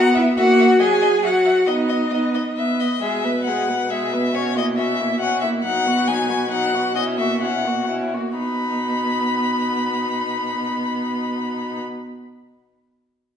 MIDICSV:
0, 0, Header, 1, 5, 480
1, 0, Start_track
1, 0, Key_signature, 5, "major"
1, 0, Tempo, 437637
1, 418, Time_signature, 3, 2, 24, 8
1, 7625, Tempo, 468384
1, 8585, Tempo, 484653
1, 14013, End_track
2, 0, Start_track
2, 0, Title_t, "Violin"
2, 0, Program_c, 0, 40
2, 172, Note_on_c, 0, 76, 51
2, 260, Note_off_c, 0, 76, 0
2, 412, Note_on_c, 0, 76, 60
2, 500, Note_off_c, 0, 76, 0
2, 643, Note_on_c, 0, 76, 56
2, 731, Note_off_c, 0, 76, 0
2, 871, Note_on_c, 0, 75, 44
2, 958, Note_off_c, 0, 75, 0
2, 1111, Note_on_c, 0, 75, 47
2, 1199, Note_off_c, 0, 75, 0
2, 1353, Note_on_c, 0, 76, 46
2, 1440, Note_off_c, 0, 76, 0
2, 1591, Note_on_c, 0, 76, 42
2, 1679, Note_off_c, 0, 76, 0
2, 1828, Note_on_c, 0, 75, 49
2, 1916, Note_off_c, 0, 75, 0
2, 2074, Note_on_c, 0, 75, 40
2, 2162, Note_off_c, 0, 75, 0
2, 2309, Note_on_c, 0, 75, 35
2, 2397, Note_off_c, 0, 75, 0
2, 2571, Note_on_c, 0, 75, 42
2, 2659, Note_off_c, 0, 75, 0
2, 2826, Note_on_c, 0, 76, 62
2, 3073, Note_on_c, 0, 75, 49
2, 3089, Note_off_c, 0, 76, 0
2, 3306, Note_on_c, 0, 76, 58
2, 3322, Note_off_c, 0, 75, 0
2, 3773, Note_off_c, 0, 76, 0
2, 3780, Note_on_c, 0, 78, 56
2, 4285, Note_on_c, 0, 76, 53
2, 4302, Note_off_c, 0, 78, 0
2, 4767, Note_on_c, 0, 73, 62
2, 4784, Note_off_c, 0, 76, 0
2, 5001, Note_off_c, 0, 73, 0
2, 5021, Note_on_c, 0, 75, 56
2, 5109, Note_off_c, 0, 75, 0
2, 5233, Note_on_c, 0, 76, 55
2, 5701, Note_off_c, 0, 76, 0
2, 5707, Note_on_c, 0, 78, 63
2, 5927, Note_off_c, 0, 78, 0
2, 5934, Note_on_c, 0, 76, 61
2, 6022, Note_off_c, 0, 76, 0
2, 6183, Note_on_c, 0, 78, 66
2, 6663, Note_on_c, 0, 80, 61
2, 6679, Note_off_c, 0, 78, 0
2, 7134, Note_off_c, 0, 80, 0
2, 7141, Note_on_c, 0, 78, 59
2, 7617, Note_off_c, 0, 78, 0
2, 7627, Note_on_c, 0, 75, 72
2, 7709, Note_off_c, 0, 75, 0
2, 7860, Note_on_c, 0, 76, 57
2, 8091, Note_off_c, 0, 76, 0
2, 8104, Note_on_c, 0, 78, 50
2, 8580, Note_off_c, 0, 78, 0
2, 9080, Note_on_c, 0, 83, 47
2, 12457, Note_off_c, 0, 83, 0
2, 14013, End_track
3, 0, Start_track
3, 0, Title_t, "Violin"
3, 0, Program_c, 1, 40
3, 0, Note_on_c, 1, 78, 86
3, 162, Note_on_c, 1, 76, 66
3, 178, Note_off_c, 1, 78, 0
3, 402, Note_off_c, 1, 76, 0
3, 408, Note_on_c, 1, 78, 72
3, 873, Note_off_c, 1, 78, 0
3, 889, Note_on_c, 1, 80, 69
3, 1354, Note_off_c, 1, 80, 0
3, 1372, Note_on_c, 1, 78, 61
3, 1844, Note_on_c, 1, 75, 55
3, 1860, Note_off_c, 1, 78, 0
3, 2824, Note_off_c, 1, 75, 0
3, 3306, Note_on_c, 1, 68, 44
3, 3563, Note_on_c, 1, 71, 40
3, 3580, Note_off_c, 1, 68, 0
3, 3811, Note_on_c, 1, 68, 40
3, 3827, Note_off_c, 1, 71, 0
3, 4037, Note_on_c, 1, 71, 41
3, 4053, Note_off_c, 1, 68, 0
3, 4276, Note_off_c, 1, 71, 0
3, 4283, Note_on_c, 1, 68, 43
3, 4536, Note_on_c, 1, 71, 39
3, 4552, Note_off_c, 1, 68, 0
3, 4768, Note_off_c, 1, 71, 0
3, 4774, Note_on_c, 1, 66, 44
3, 5011, Note_on_c, 1, 64, 36
3, 5028, Note_off_c, 1, 66, 0
3, 5247, Note_on_c, 1, 66, 38
3, 5264, Note_off_c, 1, 64, 0
3, 5486, Note_on_c, 1, 64, 39
3, 5503, Note_off_c, 1, 66, 0
3, 5711, Note_off_c, 1, 64, 0
3, 5718, Note_on_c, 1, 66, 39
3, 5960, Note_on_c, 1, 64, 37
3, 5977, Note_off_c, 1, 66, 0
3, 6192, Note_off_c, 1, 64, 0
3, 6203, Note_on_c, 1, 63, 42
3, 6436, Note_on_c, 1, 66, 42
3, 6453, Note_off_c, 1, 63, 0
3, 6666, Note_on_c, 1, 63, 44
3, 6683, Note_off_c, 1, 66, 0
3, 6907, Note_on_c, 1, 66, 40
3, 6923, Note_off_c, 1, 63, 0
3, 7135, Note_off_c, 1, 66, 0
3, 7141, Note_on_c, 1, 63, 45
3, 7396, Note_on_c, 1, 66, 39
3, 7412, Note_off_c, 1, 63, 0
3, 7633, Note_off_c, 1, 66, 0
3, 7647, Note_on_c, 1, 64, 48
3, 7884, Note_on_c, 1, 66, 40
3, 7899, Note_off_c, 1, 64, 0
3, 8105, Note_on_c, 1, 64, 39
3, 8120, Note_off_c, 1, 66, 0
3, 8360, Note_on_c, 1, 66, 38
3, 8375, Note_off_c, 1, 64, 0
3, 8580, Note_off_c, 1, 66, 0
3, 8586, Note_on_c, 1, 64, 39
3, 8833, Note_on_c, 1, 66, 33
3, 8848, Note_off_c, 1, 64, 0
3, 9061, Note_off_c, 1, 66, 0
3, 9067, Note_on_c, 1, 63, 38
3, 12444, Note_off_c, 1, 63, 0
3, 14013, End_track
4, 0, Start_track
4, 0, Title_t, "Cello"
4, 0, Program_c, 2, 42
4, 180, Note_on_c, 2, 64, 70
4, 268, Note_off_c, 2, 64, 0
4, 419, Note_on_c, 2, 66, 93
4, 883, Note_on_c, 2, 68, 79
4, 899, Note_off_c, 2, 66, 0
4, 1363, Note_on_c, 2, 66, 70
4, 1379, Note_off_c, 2, 68, 0
4, 1843, Note_on_c, 2, 63, 62
4, 1859, Note_off_c, 2, 66, 0
4, 2824, Note_off_c, 2, 63, 0
4, 3313, Note_on_c, 2, 47, 52
4, 6141, Note_off_c, 2, 47, 0
4, 6207, Note_on_c, 2, 47, 52
4, 8823, Note_off_c, 2, 47, 0
4, 9084, Note_on_c, 2, 47, 37
4, 12460, Note_off_c, 2, 47, 0
4, 14013, End_track
5, 0, Start_track
5, 0, Title_t, "Viola"
5, 0, Program_c, 3, 41
5, 0, Note_on_c, 3, 59, 59
5, 368, Note_off_c, 3, 59, 0
5, 409, Note_on_c, 3, 58, 73
5, 827, Note_off_c, 3, 58, 0
5, 884, Note_on_c, 3, 54, 60
5, 1305, Note_off_c, 3, 54, 0
5, 1354, Note_on_c, 3, 54, 53
5, 1786, Note_off_c, 3, 54, 0
5, 1848, Note_on_c, 3, 59, 50
5, 2277, Note_off_c, 3, 59, 0
5, 2331, Note_on_c, 3, 59, 45
5, 2767, Note_off_c, 3, 59, 0
5, 2819, Note_on_c, 3, 59, 47
5, 3255, Note_off_c, 3, 59, 0
5, 3314, Note_on_c, 3, 56, 42
5, 3558, Note_on_c, 3, 59, 37
5, 3575, Note_off_c, 3, 56, 0
5, 3810, Note_on_c, 3, 56, 41
5, 3827, Note_off_c, 3, 59, 0
5, 4044, Note_on_c, 3, 59, 35
5, 4061, Note_off_c, 3, 56, 0
5, 4284, Note_off_c, 3, 59, 0
5, 4295, Note_on_c, 3, 56, 38
5, 4530, Note_on_c, 3, 59, 35
5, 4547, Note_off_c, 3, 56, 0
5, 4760, Note_off_c, 3, 59, 0
5, 4767, Note_on_c, 3, 61, 40
5, 4990, Note_on_c, 3, 58, 36
5, 5006, Note_off_c, 3, 61, 0
5, 5239, Note_on_c, 3, 61, 39
5, 5255, Note_off_c, 3, 58, 0
5, 5477, Note_on_c, 3, 58, 38
5, 5493, Note_off_c, 3, 61, 0
5, 5706, Note_off_c, 3, 58, 0
5, 5712, Note_on_c, 3, 61, 37
5, 5955, Note_on_c, 3, 58, 36
5, 5972, Note_off_c, 3, 61, 0
5, 6189, Note_off_c, 3, 58, 0
5, 6195, Note_on_c, 3, 54, 41
5, 6426, Note_on_c, 3, 59, 38
5, 6443, Note_off_c, 3, 54, 0
5, 6669, Note_on_c, 3, 54, 41
5, 6685, Note_off_c, 3, 59, 0
5, 6906, Note_on_c, 3, 59, 41
5, 6922, Note_off_c, 3, 54, 0
5, 7120, Note_off_c, 3, 59, 0
5, 7127, Note_on_c, 3, 54, 39
5, 7379, Note_on_c, 3, 59, 43
5, 7396, Note_off_c, 3, 54, 0
5, 7611, Note_off_c, 3, 59, 0
5, 7617, Note_on_c, 3, 61, 40
5, 7856, Note_on_c, 3, 58, 41
5, 7871, Note_off_c, 3, 61, 0
5, 8094, Note_on_c, 3, 61, 39
5, 8110, Note_off_c, 3, 58, 0
5, 8330, Note_on_c, 3, 58, 34
5, 8346, Note_off_c, 3, 61, 0
5, 8564, Note_off_c, 3, 58, 0
5, 8570, Note_on_c, 3, 61, 32
5, 8829, Note_on_c, 3, 58, 34
5, 8844, Note_off_c, 3, 61, 0
5, 9077, Note_off_c, 3, 58, 0
5, 9092, Note_on_c, 3, 59, 34
5, 12468, Note_off_c, 3, 59, 0
5, 14013, End_track
0, 0, End_of_file